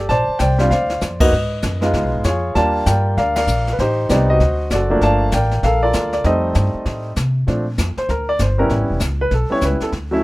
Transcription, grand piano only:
0.09 0.39 C5 medium
0.09 0.40 D5 medium
0.09 0.41 A5 loud
0.39 0.71 C5 medium
0.39 0.71 D5 medium
0.39 0.68 G5 medium
0.58 0.70 G3 medium
0.58 0.70 C4 medium
0.58 0.70 D4 medium
0.58 0.71 F4 medium
0.70 1.29 C5 medium
0.70 1.29 D5 medium
0.70 0.99 F5 medium
1.20 1.31 A#3 medium
1.20 1.31 B3 medium
1.20 1.32 D#4 medium
1.20 1.32 F#4 medium
1.20 2.10 B4 medium
1.20 2.09 D#5 medium
1.81 2.22 G#3 medium
1.81 2.22 B3 medium
1.81 2.23 D#4 medium
1.81 2.23 F4 medium
2.25 2.55 F4 medium
2.25 2.54 G#4 medium
2.25 2.57 C#5 medium
2.55 3.41 G3 medium
2.55 3.41 A#3 medium
2.55 3.41 D4 medium
2.55 3.42 F4 medium
2.55 2.87 D5 medium
2.55 2.87 A5 loud
2.86 3.18 A#4 medium
2.86 3.17 D5 medium
2.86 3.15 G5 medium
3.18 3.36 A#4 medium
3.18 3.35 D5 medium
3.18 3.34 F5 medium
3.36 3.76 A#4 medium
3.36 3.76 D5 medium
3.36 3.74 F5 loud
3.73 3.78 B4 medium
3.80 4.10 D#4 medium
3.80 4.37 G4 medium
3.80 4.11 C5 medium
4.10 4.40 G3 medium
4.10 4.41 B3 medium
4.10 4.41 C4 medium
4.10 4.41 D#4 medium
4.10 4.29 D5 medium
4.30 4.72 F#4 medium
4.30 4.87 C5 medium
4.30 4.73 D#5 medium
4.72 5.01 F#4 medium
4.72 5.01 A4 medium
4.72 5.02 D5 medium
4.90 5.30 F3 medium
4.90 5.30 A3 medium
4.90 5.30 A#3 medium
4.90 5.31 D4 medium
5.03 5.33 D5 medium
5.03 5.60 F5 medium
5.03 5.31 A5 loud
5.34 5.64 A#4 medium
5.34 5.81 D5 medium
5.34 5.65 G5 medium
5.64 6.21 A4 medium
5.64 5.82 A#4 medium
5.64 5.81 F5 medium
5.83 6.23 F4 medium
5.83 6.22 A#4 medium
5.83 6.12 D5 medium
6.13 6.25 D5 medium
6.24 7.09 G3 medium
6.24 7.10 A3 medium
6.24 7.10 C4 medium
6.24 7.10 D#4 medium
6.24 7.14 A4 medium
6.24 7.14 C5 medium
6.24 7.13 D#5 medium
7.47 7.64 F3 medium
7.47 7.64 A3 soft
7.47 7.64 C4 medium
7.47 7.65 D4 medium
7.98 8.09 C5 medium
8.10 8.28 A#4 medium
8.29 8.40 D5 medium
8.42 8.59 C5 medium
8.58 8.98 G3 medium
8.58 8.99 B3 medium
8.58 8.99 C#4 medium
8.58 8.99 E4 medium
8.58 8.70 A#4 medium
9.21 9.32 B4 medium
9.34 9.51 A4 medium
9.50 9.90 G3 medium
9.50 9.90 B3 soft
9.50 9.91 C#4 soft
9.50 9.91 E4 medium
9.50 9.63 C#5 loud
9.65 9.82 B4 medium
9.82 9.89 A4 medium
10.11 10.22 F#3 medium
10.11 10.23 A3 medium
10.11 10.23 C#4 medium
10.11 10.23 E4 medium

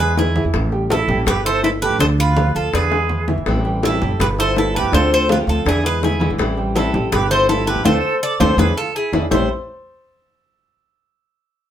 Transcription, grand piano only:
0.00 0.29 G#3 medium
0.00 0.29 G#4 medium
0.00 0.29 G#5 medium
0.35 0.66 E3 medium
0.35 0.66 E4 medium
0.35 0.66 E5 medium
0.72 0.87 G3 medium
0.72 0.87 G4 medium
0.72 0.88 G5 medium
0.91 1.06 E4 medium
0.91 1.06 E5 medium
0.91 1.06 E6 medium
1.09 1.24 G3 medium
1.09 1.24 G4 medium
1.09 1.24 G5 medium
1.27 1.42 B3 medium
1.27 1.43 B4 medium
1.27 1.42 B5 medium
1.45 1.75 E4 medium
1.45 1.75 E5 medium
1.45 1.76 E6 medium
1.82 1.97 A3 medium
1.82 1.97 A4 medium
1.82 1.98 A5 medium
2.00 2.30 D3 medium
2.00 2.30 D4 medium
2.00 2.30 D5 medium
2.36 2.67 F3 medium
2.36 2.67 F4 medium
2.36 2.67 F5 medium
2.73 2.88 D3 medium
2.73 2.88 D4 medium
2.73 2.89 D5 medium
2.91 3.21 G#3 medium
2.91 3.22 G#4 medium
2.91 3.22 G#5 medium
3.28 3.58 E3 medium
3.28 3.58 E4 medium
3.28 3.59 E5 medium
3.65 3.80 G3 medium
3.65 3.80 G4 medium
3.65 3.80 G5 medium
3.83 3.98 E4 medium
3.83 3.98 E5 medium
3.83 3.99 E6 medium
4.02 4.17 G3 medium
4.02 4.17 G4 medium
4.02 4.17 G5 medium
4.20 4.35 B3 medium
4.20 4.35 B4 medium
4.20 4.35 B5 medium
4.38 4.68 E4 medium
4.38 4.68 E5 medium
4.38 4.69 E6 medium
4.74 4.89 A3 medium
4.74 4.90 A4 medium
4.74 4.90 A5 medium
4.93 5.23 D3 medium
4.93 5.23 D4 medium
4.93 5.23 D5 medium
5.30 5.60 F3 medium
5.30 5.60 F4 medium
5.30 5.60 F5 medium
5.67 5.82 D3 medium
5.67 5.81 D4 medium
5.67 5.82 D5 medium
5.85 6.14 G#3 medium
5.85 6.14 G#4 medium
5.85 6.15 G#5 medium
6.21 6.51 E3 medium
6.21 6.51 E4 medium
6.21 6.51 E5 medium
6.57 6.72 G3 medium
6.57 6.72 G4 medium
6.57 6.73 G5 medium
6.76 6.91 E4 medium
6.76 6.91 E5 medium
6.76 6.91 E6 medium
6.94 7.09 G3 medium
6.94 7.09 G4 medium
6.94 7.10 G5 medium
7.13 7.28 B3 medium
7.13 7.28 B4 medium
7.13 7.28 B5 medium
7.30 7.60 E4 medium
7.30 7.61 E5 medium
7.30 7.61 E6 medium
7.67 7.82 A3 medium
7.67 7.82 A4 medium
7.67 7.82 A5 medium
7.85 7.97 D4 loud
7.85 7.97 F4 loud
7.85 7.97 A4 loud
8.40 8.52 D4 medium
8.40 8.52 F4 medium
8.40 8.52 A4 loud
8.58 8.70 D4 loud
8.58 8.70 E4 loud
8.58 8.70 G#4 medium
9.13 9.25 D4 medium
9.13 9.25 E4 medium
9.13 9.25 G#4 medium
9.31 9.48 A3 medium
9.31 9.48 E4 medium
9.31 9.48 G4 medium
9.31 9.48 A4 medium
9.31 9.49 C5 medium
9.31 9.49 E5 loud

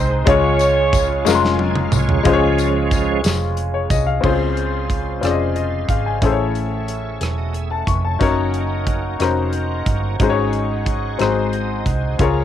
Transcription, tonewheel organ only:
0.00 0.26 G#3 medium
0.00 0.27 C4 medium
0.00 0.27 D#4 medium
0.27 2.21 G#3 medium
0.27 2.21 C#4 medium
0.27 0.34 D#4 medium
0.33 2.24 F4 medium
1.61 1.76 G#5 medium
1.79 1.93 F5 medium
1.95 2.25 C#5 medium
2.27 3.21 F3 medium
2.27 3.21 G#3 soft
2.27 3.22 C#4 medium
4.24 6.19 C#3 soft
4.24 6.19 G#3 soft
4.24 6.19 F4 soft
4.24 6.19 C5 medium
6.21 8.17 A3 medium
6.21 7.19 E4 soft
6.21 6.28 C5 soft
6.28 7.19 C#5 medium
7.20 7.37 E4 soft
7.20 7.37 C#5 soft
7.38 7.54 F#4 soft
7.38 7.54 D#5 soft
7.54 7.71 G#4 soft
7.54 7.70 E5 medium
7.70 7.87 A4 soft
7.70 7.87 F#5 medium
7.86 8.03 B4 soft
7.86 8.03 G#5 soft
8.05 8.36 C#5 soft
8.05 8.36 A5 soft
8.21 10.17 A#3 medium
8.21 10.16 D#4 medium
8.21 10.16 F#4 medium
8.21 8.28 C5 medium
8.28 10.20 C#4 medium
10.19 11.20 G#3 medium
10.19 11.20 D#4 medium
10.19 11.20 F#4 medium
10.19 10.26 C5 soft
10.27 11.23 C#5 medium
11.21 12.20 D#4 soft
11.21 12.20 F#4 soft
11.21 12.20 C5 medium
11.53 11.84 D#5 medium
11.86 12.17 G#5 soft
12.20 12.44 G#3 medium
12.20 12.44 C#4 medium
12.20 12.44 F4 medium
12.20 12.44 A#4 medium

